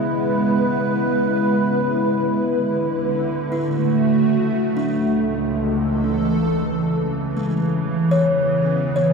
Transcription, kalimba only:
Already playing: G#3 C#5 G#5
3.52 E4
4.77 D4
7.37 G#3
8.11 C#5
8.96 C#5

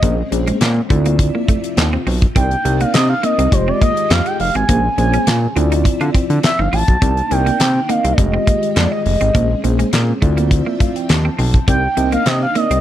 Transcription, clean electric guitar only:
0.03 A#3
0.32 muted clean electric guitar stroke
0.48 G#3
0.61 muted clean electric guitar stroke
0.91 A3
1.06 A#3
1.19 muted clean electric guitar stroke
1.35 A#3
1.49 A3
1.78 muted clean electric guitar stroke
1.93 C4
2.07 C4
2.36 C4
2.65 muted clean electric guitar stroke
2.81 A#3
2.94 muted clean electric guitar stroke
3.23 A#3
3.39 C4
3.53 muted clean electric guitar stroke
3.68 C4
3.82 A#3
4.11 A#3
4.26 muted clean electric guitar stroke
4.55 C4
4.69 A#3
4.98 muted clean electric guitar stroke
5.14 C#4
5.27 muted clean electric guitar stroke
5.57 C4
5.72 D#4
5.85 muted clean electric guitar stroke
6.01 F4
6.15 C4
6.44 muted clean electric guitar stroke
6.59 D#4
6.73 F4
7.02 C4
7.31 muted clean electric guitar stroke
7.46 A#3
7.60 muted clean electric guitar stroke
7.89 A#3
8.04 C4
8.18 muted clean electric guitar stroke
8.34 C4
8.47 A#3
8.76 A#3
8.92 muted clean electric guitar stroke
9.21 C4
9.35 A#3
9.64 muted clean electric guitar stroke
9.79 G#3
9.93 muted clean electric guitar stroke
10.22 A3
10.37 A#3
10.51 muted clean electric guitar stroke
10.66 A#3
10.80 A3
11.10 muted clean electric guitar stroke
11.25 C4
11.38 C4
11.68 C4
11.97 muted clean electric guitar stroke
12.12 A#3
12.26 muted clean electric guitar stroke
12.55 A#3
12.71 C4

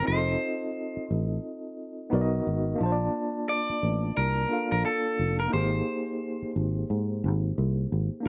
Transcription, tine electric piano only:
0.03 C4 D#4
0.07 F4 G#4
0.12 D#5
0.17 A4
2.10 B3 D#4 F#4 A#4
2.15 D5
2.21 D#5
2.76 A#3 D4
2.81 F4 A5
2.86 C5
2.92 D5
4.48 A#3 D4 F4 A4
4.53 F5
5.48 A#3 D#4
5.53 G4 G#4
5.58 C5
8.20 A#3 D4

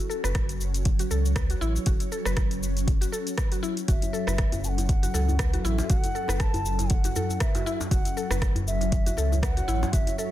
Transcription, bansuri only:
3.89 E5
4.65 A5
4.69 F#5
5.64 E5
5.89 F#5
6.40 A5
6.91 F#5
7.41 E5
7.92 F#5
8.67 E5
9.43 F#5
9.93 E5
10.19 E5

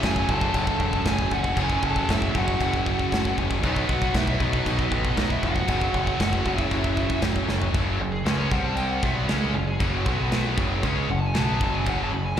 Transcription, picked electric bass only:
0.03 F#1
0.29 F#1
0.54 F#1
0.80 E1
1.06 F#1
1.31 F#1
1.57 F#1
1.82 F#1
2.09 F#1
2.35 F#1
2.61 F#1
3.12 F#1
3.38 F#1
3.63 B1
3.89 B1
4.14 B1
4.40 B1
4.66 B1
4.91 A1
5.17 B1
5.42 F1
5.68 F#1
5.94 F#1
6.20 F#1
6.45 F#1
6.71 F#1
7.22 F#1
7.48 F#1
7.74 F#1
8.00 F#1
8.26 C#2
8.51 C2
9.03 B1
9.28 C#2
9.54 F#1
9.80 F#1
10.06 B1
10.58 F#1
10.83 C#2
11.08 F#1
11.35 B1
11.61 F#1
11.86 F#1
12.13 F#1

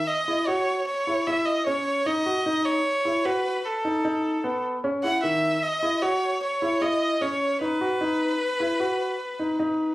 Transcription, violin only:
0.08 D#5
0.47 C#5
0.87 C#5
1.27 E5
1.46 D#5
1.66 C#5
2.06 D#5
2.65 C#5
3.25 B4
3.66 A4
5.04 F#5
5.23 E5
5.63 D#5
6.02 C#5
6.42 C#5
6.82 D#5
7.22 C#5
7.62 B4

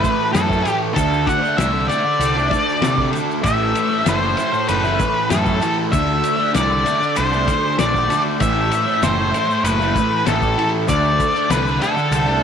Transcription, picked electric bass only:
0.35 F#2
0.97 D2
1.58 C2
2.19 C2
2.82 C3
3.44 A1
4.06 F#1
4.69 F#1
5.31 F#2
5.93 D2
6.55 C2
7.18 C2
7.79 A#1
8.41 A1
9.02 F#1
9.64 F#1
10.27 A1
10.89 D2
11.50 C2
12.11 C2

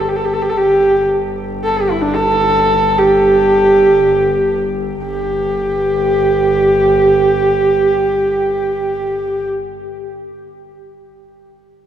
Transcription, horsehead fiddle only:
0.08 G4
0.16 A4
0.25 G4
0.33 A4
0.42 G4
0.49 A4
0.57 G4
1.64 A4
1.77 G4
1.91 E4
2.02 D4
2.14 A4
2.98 G4
5.04 G4

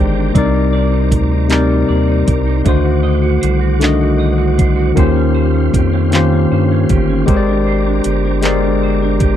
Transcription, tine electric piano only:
Already playing: D#3 G#3 G4 A#4 C5 D5
0.33 C3 G3 D#4 A#4
0.38 D5
1.48 C3 G3 D#4 A#4
1.52 D5
2.64 D3 D#3 A3 F#4
2.69 C5
3.80 D3 D#3 A3 F#4
3.84 D#5
4.95 D#3 A#3 C#4 F4 G4
5.00 C5
6.11 D#3 A#3 C#4 F4
6.15 G4 C5
7.26 G#3 G4 A#4 C5
7.30 C#5
7.37 D5
8.41 G#3 G4 A#4 C5
8.46 D5

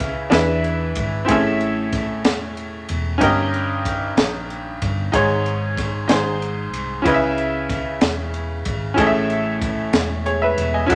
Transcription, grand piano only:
Already playing: C#3 C#4 E4 G#4 B4 E5
0.30 E3 D4 E4 G#4 B4 E5
1.25 A2 C4 E4 G#4
1.29 C#4 A4 E5
3.18 G2 C#4 D#4 G4
3.22 A#4 D#5
5.12 G#2 D#4 G#4 C#5
6.08 G#2 D#4 G#4 C5
7.02 C#3 C#4 E4 G#4
7.06 B4 D#5
7.14 E5
8.94 A2 C#4 E4 G#4
8.99 A4 D#5
9.07 E5
10.26 G#4 C#5
10.42 B4 E5
10.74 D#5 G#5
10.86 C#4 E4 F#4
10.91 A4

